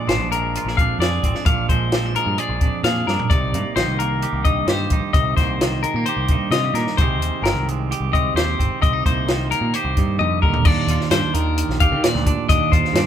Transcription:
Already playing: clean electric guitar A#2 G#3 D4
0.08 picked electric bass G#1, clean electric guitar F3 D4 C5, snare, closed hi-hat
0.19 picked electric bass A#1
0.32 clean electric guitar G#3 A#4, closed hi-hat
0.55 clean electric guitar F4, closed hi-hat
0.65 picked electric bass A#1, clean electric guitar G#4, snare
0.77 clean electric guitar F2 D4 F5, kick, closed hi-hat
0.99 picked electric bass F2, clean electric guitar G#4 D5, snare, closed hi-hat
1.23 picked electric bass G#1, clean electric guitar C4, kick, closed hi-hat
1.35 clean electric guitar D4, snare
1.46 picked electric bass A#1, clean electric guitar A#2 D4 F5, kick, closed hi-hat
1.69 picked electric bass A#1, clean electric guitar G#3 C5, kick, closed hi-hat
1.92 clean electric guitar F3 C4, snare, closed hi-hat
2.06 clean electric guitar D4
2.15 clean electric guitar G#3 A#4, closed hi-hat
2.26 picked electric bass G2
2.38 clean electric guitar G#4 D5, closed hi-hat
2.49 picked electric bass A#1
2.61 clean electric guitar F2 D4, kick, closed hi-hat
2.84 picked electric bass A#2, clean electric guitar G#4 F5, snare, closed hi-hat
3.07 picked electric bass G2, clean electric guitar D4 A#4, snare
3.19 floor tom
3.30 picked electric bass C2, clean electric guitar C3 D#4 D5, kick, closed hi-hat
3.53 picked electric bass G2, clean electric guitar A#3, closed hi-hat
3.76 picked electric bass A#1, clean electric guitar D#3 D#4 C5, snare, closed hi-hat
3.87 picked electric bass C2
3.99 clean electric guitar A#3 A#4, closed hi-hat
4.22 clean electric guitar G4, closed hi-hat
4.33 picked electric bass C2
4.45 clean electric guitar G2 D#4 D#5, kick, closed hi-hat
4.67 picked electric bass G2, clean electric guitar G4 C5, snare, closed hi-hat
4.90 picked electric bass A#1, clean electric guitar D#4, kick, closed hi-hat
5.13 picked electric bass C2, clean electric guitar C3 D#4 D#5, kick, closed hi-hat
5.37 picked electric bass C2, clean electric guitar A#3 C5, kick, snare, closed hi-hat
5.61 clean electric guitar D#3 D#4, snare, closed hi-hat
5.83 clean electric guitar G#3 A#4, closed hi-hat
5.94 picked electric bass A#2, clean electric guitar A#3
6.06 clean electric guitar G4 C5, closed hi-hat
6.17 picked electric bass C2
6.28 clean electric guitar G2 D#4, kick, closed hi-hat
6.51 picked electric bass C3, clean electric guitar F4 D#5, snare, closed hi-hat
6.64 clean electric guitar G4
6.74 picked electric bass A#2, clean electric guitar D#4 A#4, snare, closed hi-hat
6.87 snare
6.97 picked electric bass C2, clean electric guitar C3 D#3 C5, kick, closed hi-hat
7.02 clean electric guitar G#3 C4 G4
7.20 picked electric bass D#2, clean electric guitar G#3, closed hi-hat
7.42 picked electric bass G1, clean electric guitar D#3 C4 A#4, snare, closed hi-hat
7.54 picked electric bass C2
7.68 clean electric guitar G#3, closed hi-hat
7.91 clean electric guitar G4, closed hi-hat
8.00 picked electric bass C2
8.13 clean electric guitar C3 C4 D#5, kick, closed hi-hat
8.34 picked electric bass D#2, clean electric guitar G4 C5, snare, closed hi-hat
8.59 picked electric bass G1, clean electric guitar C4, kick, closed hi-hat
8.81 picked electric bass C2, clean electric guitar C3 C4 D#5, kick, closed hi-hat
8.93 clean electric guitar D#4
9.06 picked electric bass C2, clean electric guitar A#3 C5, kick, closed hi-hat
9.28 clean electric guitar D#3 D#4, snare, closed hi-hat
9.51 clean electric guitar A#3 A#4, closed hi-hat
9.61 picked electric bass A#2
9.74 clean electric guitar G4 C5, closed hi-hat
9.85 picked electric bass C2
9.97 picked electric bass G2, clean electric guitar G2 D#4, kick, closed hi-hat
10.19 picked electric bass F2, clean electric guitar C3 D#5, high tom
10.42 picked electric bass D#2, clean electric guitar D3 A#4, kick
10.54 floor tom
10.65 picked electric bass D#2, clean electric guitar D#2 D4 D5, kick, crash
10.87 picked electric bass D#2, clean electric guitar F4, closed hi-hat
11.01 snare
11.11 picked electric bass G2, clean electric guitar D4 C5, snare, closed hi-hat
11.34 picked electric bass D#2, clean electric guitar D#3 A#4, closed hi-hat
11.58 closed hi-hat
11.69 picked electric bass A#1, snare
11.80 clean electric guitar G4 F5, kick, closed hi-hat
11.92 picked electric bass D#3
12.03 clean electric guitar A#2 D5, snare, closed hi-hat
12.15 picked electric bass D2, snare
12.26 clean electric guitar D4, kick, closed hi-hat
12.49 picked electric bass D#2, clean electric guitar D#2 D4 D#5, kick, closed hi-hat
12.72 picked electric bass D#2, clean electric guitar F4 C5, kick, closed hi-hat
12.85 snare
12.93 picked electric bass G2, clean electric guitar D4, snare, closed hi-hat

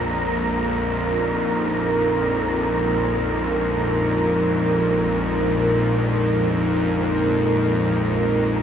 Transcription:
Already playing: synth drone A#1 F2, analog synth pad A#2 G#3 A#3 F4 A#4, synth texture A#4
1.00 analog synth pad D#4

